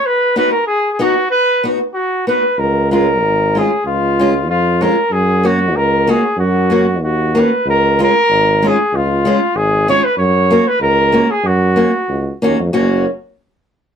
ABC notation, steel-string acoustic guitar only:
X:1
M:2/4
L:1/8
Q:1/4=95
K:F#
V:1 name="Steel-string acoustic guitar"
z [B,DF] z [B,DF] | z [B,DF] z [B,DF] | z [G,CE] z [G,CE] | z [G,CE] z [G,CE] |
z [A,CF] z [A,CF] | z [A,CF] z [A,CF] | z [G,CE] z [G,CE] | z [G,CE] z [G,CE] |
z [A,CF] z [A,CF] | z [A,CF] z [A,CF] | [A,CF] z3 |]